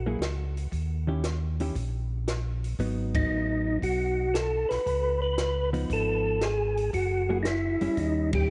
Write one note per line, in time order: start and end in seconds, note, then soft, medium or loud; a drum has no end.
0.00 0.17 A#1 medium
0.06 0.19 F#3 medium
0.06 0.19 A#3 medium
0.06 0.20 E4 medium
0.06 0.20 G#4 medium
0.19 0.68 C#2 medium
0.19 snare medium
0.19 closed hi-hat medium
0.57 open hi-hat soft
0.72 1.71 D#2 medium
0.72 kick soft
0.72 open hi-hat soft
1.07 1.22 D#3 medium
1.07 1.22 C#4 medium
1.07 1.22 E4 medium
1.07 1.22 G4 medium
1.24 snare medium
1.24 closed hi-hat medium
1.60 1.74 D#3 medium
1.60 1.74 C#4 medium
1.60 1.75 E4 medium
1.60 1.75 G4 medium
1.60 open hi-hat soft
1.75 2.75 A#1 medium
1.75 kick soft
1.75 open hi-hat soft
2.28 snare medium
2.28 closed hi-hat medium
2.64 open hi-hat soft
2.79 3.27 G#1 medium
2.79 4.25 F#3 medium
2.79 4.25 B3 medium
2.79 4.26 D#4 medium
2.79 kick soft
2.79 open hi-hat soft
3.15 3.79 D#4 medium
3.15 kick medium
3.15 ride medium
3.30 3.79 A1 medium
3.82 4.66 B1 medium
3.82 4.36 F#4 medium
3.82 kick soft
3.82 open hi-hat soft
4.34 4.71 A4 medium
4.34 snare medium
4.34 closed hi-hat medium
4.69 4.79 B1 soft
4.69 5.21 B4 loud
4.69 snare soft
4.69 open hi-hat soft
4.86 5.86 C#2 medium
4.86 kick soft
4.86 open hi-hat soft
5.22 5.70 B4 medium
5.38 snare medium
5.38 closed hi-hat medium
5.73 6.38 F3 medium
5.73 6.38 B3 medium
5.73 6.39 D#4 medium
5.73 open hi-hat soft
5.90 6.90 G#1 medium
5.90 6.45 A4 medium
5.90 kick soft
5.90 open hi-hat soft
6.41 6.91 G#4 medium
6.41 snare medium
6.41 closed hi-hat medium
6.77 open hi-hat soft
6.93 7.77 F#1 medium
6.93 7.38 F#4 medium
6.93 kick soft
6.93 open hi-hat soft
7.29 7.44 F#3 medium
7.29 7.44 A#3 medium
7.29 7.44 E4 medium
7.29 7.44 G#4 medium
7.43 7.46 D#4 medium
7.43 snare medium
7.43 closed hi-hat soft
7.47 8.00 E4 medium
7.81 7.89 F#1 soft
7.81 8.46 G3 medium
7.81 8.47 C#4 medium
7.81 8.47 E4 medium
7.81 open hi-hat soft
7.97 8.50 D#2 medium
7.97 8.31 D#4 medium
7.97 kick soft
7.97 open hi-hat soft
8.33 8.50 G4 medium
8.33 kick medium
8.33 ride medium